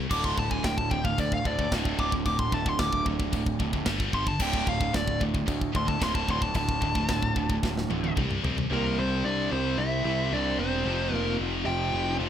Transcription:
0.10 picked electric bass D1, distorted electric guitar D2 A2 D3, lead electric guitar D6, kick, crash, china
0.24 lead electric guitar C6, kick
0.37 picked electric bass D1, distorted electric guitar D2 A2, lead electric guitar A5, kick
0.51 distorted electric guitar D2 A2, lead electric guitar G#5, kick
0.64 picked electric bass D1, distorted electric guitar D2 A2, lead electric guitar G5, kick, snare, china
0.78 lead electric guitar A5, kick
0.91 picked electric bass D1, distorted electric guitar D2 A2, lead electric guitar G5, kick
1.04 distorted electric guitar D2 A2, lead electric guitar F5, kick
1.18 picked electric bass D2, distorted electric guitar D2 A2, lead electric guitar D5, kick, china
1.32 lead electric guitar F5, kick
1.44 picked electric bass D2, distorted electric guitar D2 A2, overdriven electric guitar D3, lead electric guitar D5, kick
1.59 distorted electric guitar D2 A2, kick
1.72 picked electric bass D1, distorted electric guitar D2 A2 D3, kick, snare, china
1.85 kick
1.98 picked electric bass D1, distorted electric guitar D2 A2 D3, lead electric guitar D6, kick
2.12 distorted electric guitar D2 A2, kick
2.26 picked electric bass D1, distorted electric guitar D2 A2, overdriven electric guitar D3, lead electric guitar D6, kick, china
2.39 lead electric guitar C6, kick
2.52 picked electric bass D1, distorted electric guitar D2 A2, lead electric guitar A5, kick
2.66 distorted electric guitar D2 A2, lead electric guitar C6, kick
2.79 picked electric bass D1, distorted electric guitar D2 A2, lead electric guitar D6, kick, snare, china
2.93 kick
3.05 picked electric bass D1, distorted electric guitar D2 A2, kick
3.19 distorted electric guitar D2 A2, kick
3.32 picked electric bass D1, distorted electric guitar D2 A2, kick, china
3.46 kick
3.59 picked electric bass D1, distorted electric guitar D2 A2, overdriven electric guitar D3, kick
3.73 distorted electric guitar D2 A2, kick
3.86 picked electric bass G1, distorted electric guitar G2 D3 G3, kick, snare, china
4.00 kick
4.12 picked electric bass G1, distorted electric guitar G2 D3 G3, lead electric guitar C6, kick
4.27 distorted electric guitar G2 D3, lead electric guitar A5, kick
4.39 picked electric bass D1, distorted electric guitar D2 A2 D3, lead electric guitar G5, kick, crash, china
4.53 kick
4.67 picked electric bass D1, distorted electric guitar D2 A2, lead electric guitar F5, kick
4.80 distorted electric guitar D2 A2, kick
4.93 picked electric bass D1, distorted electric guitar D2 A2, lead electric guitar D5, kick, snare, china
5.08 kick
5.20 picked electric bass D1, distorted electric guitar D2 A2, kick
5.34 distorted electric guitar D2 A2, kick
5.46 distorted electric guitar D2 A2, picked electric bass D2, kick, china
5.61 kick
5.73 distorted electric guitar D2 A2, picked electric bass D2, overdriven electric guitar D3, lead electric guitar C6, kick
5.87 distorted electric guitar D2 A2, lead electric guitar A5, kick
6.00 picked electric bass D1, distorted electric guitar D2 A2 D3, lead electric guitar C6, kick, snare, china
6.15 lead electric guitar A5, kick
6.27 picked electric bass D1, distorted electric guitar D2 A2 D3, lead electric guitar C6, kick
6.40 distorted electric guitar D2 A2, lead electric guitar A5, kick
6.54 picked electric bass D1, distorted electric guitar D2 A2, overdriven electric guitar D3, lead electric guitar A5, kick, china
6.69 kick
6.81 picked electric bass D1, distorted electric guitar D2 A2, kick
6.95 distorted electric guitar D2 A2, kick
7.09 picked electric bass D1, distorted electric guitar D2 A2, kick, snare, china
7.23 kick
7.36 picked electric bass D1, distorted electric guitar D2 A2, kick
7.50 distorted electric guitar D2 A2, kick
7.63 picked electric bass D1, distorted electric guitar D2 A2, kick, snare
7.78 snare
7.90 picked electric bass D1, distorted electric guitar D2 A2, overdriven electric guitar D3, high tom
8.03 distorted electric guitar D2 A2, high tom
8.16 picked electric bass C2, distorted electric guitar C3 G3 C4, kick, mid tom
8.31 mid tom
8.43 picked electric bass C2, distorted electric guitar C3 G3 C4, floor tom
8.57 distorted electric guitar C3 G3, floor tom
8.70 picked electric bass C2, distorted electric guitar C3 G3 C4, lead electric guitar A#3 A#4
8.98 picked electric bass C2, lead electric guitar C4 C5
9.25 picked electric bass C2, lead electric guitar D4 D5
9.52 picked electric bass C2, overdriven electric guitar C3 G3 C4, lead electric guitar C4 C5
9.78 picked electric bass C2, lead electric guitar E4 E5
10.04 picked electric bass C2, distorted electric guitar C3 G3 C4
10.32 picked electric bass C2, distorted electric guitar C3 G3 C4, lead electric guitar D4 D5
10.59 picked electric bass E1, lead electric guitar C4 C5
10.85 picked electric bass F1, distorted electric guitar F2 C3 F3
11.12 picked electric bass F1, lead electric guitar A#3 A#4
11.40 picked electric bass F1
11.64 picked electric bass F1, overdriven electric guitar F2 C3 F3, lead electric guitar G4 G5
11.93 picked electric bass F1
12.19 picked electric bass F1, distorted electric guitar F2 C3 F3

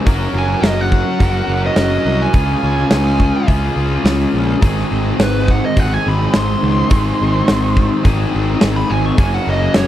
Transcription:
0.05 picked electric bass F#1, distorted electric guitar F#3 C#4 F#4 A#4, kick, open hi-hat
0.34 picked electric bass F#1
0.38 lead electric guitar G#5
0.62 picked electric bass F#1, snare, open hi-hat
0.66 lead electric guitar D#5
0.81 lead electric guitar F#5
0.92 kick
1.20 picked electric bass F#1, distorted electric guitar F#3 C#4 F#4 A#4, kick, open hi-hat
1.48 picked electric bass F#1
1.66 lead electric guitar D#5
1.76 picked electric bass F#1, snare, open hi-hat
2.05 picked electric bass C2
2.22 lead electric guitar G#5
2.33 picked electric bass C#2, distorted electric guitar C#3 G#3 C#4 F4 G#4, kick, open hi-hat
2.63 picked electric bass C#2
2.91 picked electric bass C#2, lead electric guitar G#5, snare, open hi-hat
3.20 kick
3.46 picked electric bass C#2, distorted electric guitar C#3 G#3 C#4 F4 G#4, kick, open hi-hat
3.76 picked electric bass C#2
4.04 picked electric bass C#2, snare, open hi-hat
4.34 picked electric bass A#1
4.61 picked electric bass G#1, distorted electric guitar G#2 D#3 G#3 C4 D#4 G#4, kick, open hi-hat
4.91 picked electric bass G#1
5.19 picked electric bass G#1, lead electric guitar B4, snare, open hi-hat
5.48 lead electric guitar F#5, kick
5.66 lead electric guitar D#5
5.77 picked electric bass G#1, distorted electric guitar G#2 D#3 G#3 C4 D#4 G#4, lead electric guitar F#5, kick, open hi-hat
5.94 lead electric guitar G#5
6.06 picked electric bass G#1, lead electric guitar B5
6.34 picked electric bass G#1, lead electric guitar C6, snare, open hi-hat
6.63 picked electric bass C#2
6.89 picked electric bass G#1, distorted electric guitar G#2 D#3 G#3 C4 D#4 G#4, kick, open hi-hat
7.21 picked electric bass G#1
7.48 picked electric bass G#1, snare, open hi-hat
7.77 kick
8.03 picked electric bass G#1, distorted electric guitar G#2 D#3 G#3 C4 D#4 G#4, kick, open hi-hat
8.35 picked electric bass G#1
8.61 picked electric bass G#1, snare, open hi-hat
8.76 lead electric guitar B5
8.90 picked electric bass G#1, lead electric guitar G#5
9.06 lead electric guitar C#6
9.16 picked electric bass F#1, distorted electric guitar F#2 C#3 F#3 A#3 C#4 F#4, lead electric guitar G#5, kick, open hi-hat
9.34 lead electric guitar F#5
9.47 picked electric bass F#1, lead electric guitar D#5
9.74 picked electric bass F#1, lead electric guitar C#5, snare, open hi-hat

